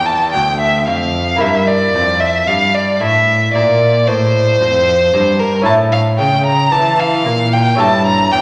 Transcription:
Already playing: lute E2 F4 D5, cello E2
0.06 violin A5
0.32 lute D2, cello D2, violin G5
0.60 violin E5
0.88 lute F2, cello F2, violin F5
1.36 lute A#3 E4 A#4
1.40 lute G2, cello G2, violin E5
1.68 violin D5
1.94 cello F2, lute F2
2.20 violin E5
2.47 cello G2, lute G2, violin F5
2.75 violin D5
3.00 lute A2, cello A2, violin E5
3.54 cello A#2, lute A#2, violin D5
4.07 lute A2, cello A2, violin C5
4.61 lute F2, cello F2
5.14 lute G2, cello G2
5.39 violin A#4
5.62 lute C#4 E4 A4, violin A5
5.66 lute A2, cello A2
5.92 violin F5
6.18 lute C#3, cello C#3, violin G5
6.46 violin A#5
6.72 lute E3, cello E3, violin A5
7.00 violin F5
7.26 lute A#2, cello A#2
7.53 violin G5
7.75 lute C#4 E4 A4
7.79 lute G2, cello G2, violin A5
8.06 violin A#5
8.31 lute E2, cello E2, violin G5

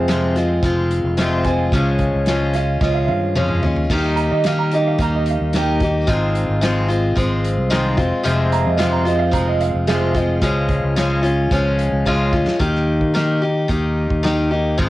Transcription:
Already playing: fingered electric bass F2, tonewheel organ G#3 F4 C5 F5, upright piano C4 G#4
0.08 steel-string acoustic guitar F2 C3 F3 G#3 C4 F4, snare, closed hi-hat
0.36 steel-string acoustic guitar F3 G#3 C4 F4, snare, closed hi-hat
0.63 fingered electric bass F1, steel-string acoustic guitar F3 G#3 C4 F4, kick, closed hi-hat
0.91 closed hi-hat
1.04 fingered electric bass F1
1.17 steel-string acoustic guitar F2 C3 F3 G#3 C4 F4, snare, closed hi-hat
1.39 upright piano G5
1.45 steel-string acoustic guitar F3 G#3 C4 F4, upright piano G#5, kick, closed hi-hat
1.72 fingered electric bass C#2, steel-string acoustic guitar C#3 F3 G#3 C#4 F4, tonewheel organ F4 C#5 F5, kick, closed hi-hat
1.99 kick, closed hi-hat
2.15 fingered electric bass C#2
2.26 steel-string acoustic guitar C#3 F3 G#3 C#4 F4, snare, closed hi-hat
2.53 steel-string acoustic guitar C#4 F4, upright piano F5, snare, closed hi-hat
2.58 steel-string acoustic guitar G#3
2.81 fingered electric bass C#2, steel-string acoustic guitar F3 G#3 C#4 F4, upright piano D#5, kick, snare
2.94 upright piano F5
3.05 upright piano E5 F5, high tom
3.09 fingered electric bass G2
3.35 fingered electric bass F2, steel-string acoustic guitar C#3 F3 G#3 C#4 F4, mid tom
3.49 mid tom
3.63 fingered electric bass D#2, steel-string acoustic guitar G#3 C#4 F4, floor tom
3.76 floor tom
3.90 fingered electric bass D#2, steel-string acoustic guitar D#3 A#3 D#4 G4, tonewheel organ G3 D#4 A#4 D#5, kick, splash, crash
4.16 upright piano A#5, closed hi-hat
4.31 fingered electric bass D#3, upright piano D#5
4.44 steel-string acoustic guitar D#3 A#3 D#4, upright piano F5, snare, closed hi-hat
4.48 steel-string acoustic guitar G4
4.59 upright piano A#5
4.71 steel-string acoustic guitar D#4 G4, upright piano D#5, closed hi-hat
4.76 steel-string acoustic guitar A#3
4.87 upright piano F5
4.99 fingered electric bass D#2, steel-string acoustic guitar D#3 A#3 D#4, upright piano A#5, kick, closed hi-hat
5.03 steel-string acoustic guitar G4
5.15 upright piano D#5
5.26 closed hi-hat
5.30 upright piano F5
5.41 fingered electric bass D#2
5.53 steel-string acoustic guitar D#3 A#3 D#4 G4, snare, closed hi-hat
5.57 upright piano G5
5.80 steel-string acoustic guitar D#4 G4, kick, closed hi-hat
5.84 steel-string acoustic guitar A#3
6.07 fingered electric bass G#1, steel-string acoustic guitar G#2 D#3 F3 G#3 C4 F4, tonewheel organ G#3 F4 C5 D#5, kick, closed hi-hat
6.35 closed hi-hat
6.49 fingered electric bass G#1
6.61 steel-string acoustic guitar G#2 D#3 F3 G#3 C4 F4, snare, closed hi-hat
6.88 steel-string acoustic guitar F3 G#3 C4 F4, closed hi-hat
7.15 fingered electric bass G#1, steel-string acoustic guitar F3 G#3 C4 F4, kick, closed hi-hat
7.44 closed hi-hat
7.57 fingered electric bass C2
7.70 steel-string acoustic guitar G#2 D#3 F3 G#3 C4 F4, snare, closed hi-hat
7.97 fingered electric bass F1, steel-string acoustic guitar F3 G#3 C4 F4, tonewheel organ F5, kick, closed hi-hat
8.23 fingered electric bass F1, steel-string acoustic guitar F2 C3 F3 G#3 C4 F4, closed hi-hat
8.52 upright piano A#5, closed hi-hat
8.66 fingered electric bass F2, upright piano D#5
8.77 steel-string acoustic guitar F2 C3 F3 G#3 C4 F4, upright piano F5, snare, closed hi-hat
8.92 upright piano A#5
9.05 steel-string acoustic guitar F3 G#3 C4 F4, upright piano D#5, closed hi-hat
9.19 upright piano F5
9.31 fingered electric bass F1, steel-string acoustic guitar F3 G#3 C4 F4, upright piano A#5, kick, closed hi-hat
9.48 upright piano D#5
9.61 upright piano F5, closed hi-hat
9.74 fingered electric bass F1
9.87 steel-string acoustic guitar F2 C3 F3 G#3 C4 F4, upright piano G#4 F5, snare, closed hi-hat
10.14 steel-string acoustic guitar F3 G#3 C4 F4, kick, closed hi-hat
10.42 fingered electric bass C#2, steel-string acoustic guitar C#3 F3 G#3 C#4 F4, tonewheel organ F4 C#5, kick, closed hi-hat
10.69 kick, closed hi-hat
10.83 fingered electric bass C#2
10.96 steel-string acoustic guitar C#3 F3 G#3 C#4 F4, snare, closed hi-hat
11.23 steel-string acoustic guitar G#3 C#4 F4, closed hi-hat
11.51 fingered electric bass C#2, steel-string acoustic guitar F3 G#3 C#4 F4, kick, closed hi-hat
11.79 closed hi-hat
11.92 fingered electric bass C#2
12.06 steel-string acoustic guitar C#3 F3 G#3 C#4 F4, kick
12.33 fingered electric bass D2, steel-string acoustic guitar G#3 C#4 F4, kick
12.48 snare
12.59 fingered electric bass D#2, steel-string acoustic guitar D#3 A#3 D#4 G4, kick, closed hi-hat
12.75 snare
13.01 fingered electric bass D#3, kick
13.14 steel-string acoustic guitar D#3 A#3 D#4 G4, snare, closed hi-hat
13.42 steel-string acoustic guitar A#3 D#4 G4
13.68 fingered electric bass D#2, steel-string acoustic guitar D#3 A#3 D#4 G4, kick, closed hi-hat
14.10 fingered electric bass D#2, kick
14.23 steel-string acoustic guitar D#3 A#3 D#4 G4, snare, closed hi-hat
14.51 steel-string acoustic guitar A#3 D#4 G4
14.77 fingered electric bass G#1, steel-string acoustic guitar G#2 D#3 F3 G#3 C4 F4, kick, closed hi-hat

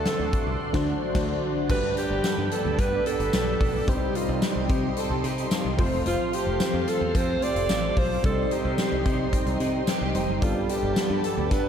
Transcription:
Already playing: synth keys D3 A3 D4 F#4 C5, clean electric guitar A3 F#4, alto saxophone A4, string machine A4 D5 F#5 C6
0.06 clean electric guitar C4, snare, closed hi-hat
0.20 picked electric bass D2
0.33 clean electric guitar F#4, kick, closed hi-hat
0.47 picked electric bass C2
0.73 picked electric bass D2, synth keys D3 A3 D4 F#4 C5, kick, snare, crash
1.14 picked electric bass D2, synth keys D3 A3 D4 F#4 C5, kick, snare, crash
1.68 picked electric bass G1, synth keys G2 A3 D4 G4 B4, clean electric guitar G3, string machine A4 D5 G5 B5, alto saxophone B4, kick, crash
1.97 clean electric guitar D4, alto saxophone G4, closed hi-hat
2.11 picked electric bass G1
2.24 clean electric guitar B3, muted picked electric bass stroke, snare, closed hi-hat, tambourine
2.38 picked electric bass G2
2.51 clean electric guitar A4, alto saxophone A4, closed hi-hat
2.65 picked electric bass D2
2.79 picked electric bass G2, clean electric guitar B3, alto saxophone B4, kick, closed hi-hat
3.06 clean electric guitar D4, alto saxophone A4, closed hi-hat
3.20 picked electric bass G1, closed hi-hat
3.33 picked electric bass B1, clean electric guitar A4, snare, closed hi-hat, tambourine
3.60 picked electric bass B1, clean electric guitar D4, kick, open hi-hat
3.87 picked electric bass C2, synth keys C3 G3 C4 D#4 C5, clean electric guitar G3, string machine G4 C5 D#5 C6, alto saxophone G4, kick, closed hi-hat
4.15 clean electric guitar D#4, alto saxophone F4, closed hi-hat
4.29 picked electric bass C2
4.42 clean electric guitar C4, alto saxophone G4, snare, closed hi-hat, tambourine
4.56 picked electric bass C2
4.69 picked electric bass C3, clean electric guitar G4, kick, closed hi-hat
4.97 clean electric guitar C4, violin section A4, closed hi-hat
5.10 picked electric bass C2
5.24 picked electric bass C3, clean electric guitar D#4, violin section G4, closed hi-hat
5.38 closed hi-hat
5.51 violin section F4, clean electric guitar G4, snare, closed hi-hat, tambourine
5.65 picked electric bass C2
5.78 picked electric bass F1, clean electric guitar F3, synth keys A3 C4 F4 C5, string machine A4 C5 F5, kick, open hi-hat
5.92 picked electric bass E1
6.06 picked electric bass F1, clean electric guitar F3, alto saxophone F4, closed hi-hat
6.33 clean electric guitar F4, alto saxophone G4, closed hi-hat
6.47 picked electric bass F1
6.60 clean electric guitar C4, snare, closed hi-hat, tambourine
6.74 picked electric bass F2
6.87 clean electric guitar A4, alto saxophone A4, closed hi-hat
7.01 picked electric bass E2
7.15 picked electric bass F2, clean electric guitar C4, alto saxophone C5, kick, closed hi-hat
7.42 synth keys A3 C4 F4 G4, clean electric guitar F4, alto saxophone D5, closed hi-hat
7.56 picked electric bass F1, closed hi-hat
7.69 picked electric bass A1, clean electric guitar A4, snare, closed hi-hat, tambourine
7.96 picked electric bass B1, clean electric guitar F4, alto saxophone C5, kick, open hi-hat
8.23 picked electric bass C2, synth keys C3 G3 C4 D4 C5, clean electric guitar G3, string machine G4 D#5, alto saxophone A4, kick, closed hi-hat
8.31 synth keys D#4
8.51 clean electric guitar D#4, alto saxophone G4, closed hi-hat
8.65 picked electric bass C2
8.78 clean electric guitar C4, snare, closed hi-hat, tambourine
8.92 picked electric bass C2
9.05 picked electric bass C3, violin section D#4, clean electric guitar G4, kick, closed hi-hat
9.33 clean electric guitar C4, violin section D#4, kick, closed hi-hat
9.46 picked electric bass C2, closed hi-hat
9.60 picked electric bass C3, clean electric guitar D#4, closed hi-hat
9.87 violin section G4, clean electric guitar G4, snare, closed hi-hat, tambourine
10.01 picked electric bass C2
10.14 picked electric bass F1, synth keys G3 C4 D#4 C5, clean electric guitar D#4, closed hi-hat
10.28 picked electric bass F#1
10.41 picked electric bass G1, synth keys G2 G3 B3 D4 A4, clean electric guitar G3, alto saxophone F4, string machine B4 D5 A5, kick, closed hi-hat
10.69 clean electric guitar D4, alto saxophone G4, closed hi-hat
10.83 picked electric bass G1
10.96 clean electric guitar B3, snare, closed hi-hat, tambourine
11.10 picked electric bass G2
11.24 clean electric guitar A4, alto saxophone A4, closed hi-hat
11.38 picked electric bass D2
11.51 picked electric bass G2, clean electric guitar B3, alto saxophone B4, kick, closed hi-hat

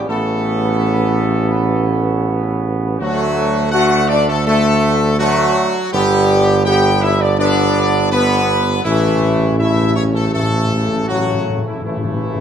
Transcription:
0.08 tuba A1, trombone section C#3 B3, french horn section A3, trumpet section A4
3.00 tuba D2, trombone section D3 A3, french horn section F#3, trumpet section F#4
3.72 trombone section D3 A3, french horn section F#4, trumpet section F#5
4.08 french horn section D4, trumpet section D5
4.28 french horn section A3, trumpet section A4
4.46 trombone section D3 A3, french horn section A3, trumpet section A4
5.18 trombone section D3 A3, french horn section F#3, trumpet section F#4
5.91 tuba G1, trombone section D3 B3, french horn section G3, trumpet section G4
6.65 trombone section D3 B3, french horn section G4, trumpet section G5
7.02 french horn section E4, trumpet section E5
7.20 french horn section D4, trumpet section D5
7.38 trombone section D3 B3, french horn section D4, trumpet section D5
8.11 trombone section D3 B3, french horn section B3, trumpet section B4
8.84 tuba A1, timpani A2, trombone section C#3 A3, french horn section E3, trumpet section E4
8.92 timpani A2
9.00 timpani A2
9.07 timpani A2
9.15 timpani A2
9.22 timpani A2
9.30 timpani A2
9.37 timpani A2
9.45 timpani A2
9.52 timpani A2
9.58 timpani A2, trombone section C#3 A3, french horn section E4, trumpet section E5
9.68 timpani A2
9.75 timpani A2
9.82 timpani A2
9.90 timpani A2
9.95 timpani A2, french horn section C#4, trumpet section C#5
10.04 timpani A2
10.12 timpani A2, french horn section A3, trumpet section A4
10.20 timpani A2
10.27 timpani A2
10.33 timpani A2, trombone section C#3 A3, french horn section A3, trumpet section A4
10.42 timpani A2
10.50 timpani A2
10.57 timpani A2
10.65 timpani A2
10.73 timpani A2
10.80 timpani A2
10.88 timpani A2
10.96 timpani A2
11.03 timpani A2
11.08 timpani A2, french horn section F#3, trumpet section F#4
11.19 timpani A2
11.27 timpani A2
11.34 timpani A2
11.42 timpani A2
11.49 timpani A2
11.58 timpani A2
11.65 timpani A2, french horn section E3, trumpet section E4
11.73 timpani A2
11.81 tuba A1, timpani A2, trombone section C#3 A3, french horn section E3, trumpet section E4
11.89 timpani A2
11.97 timpani A2
12.04 timpani A2
12.12 timpani A2
12.20 timpani A2
12.28 timpani A2
12.36 timpani A2

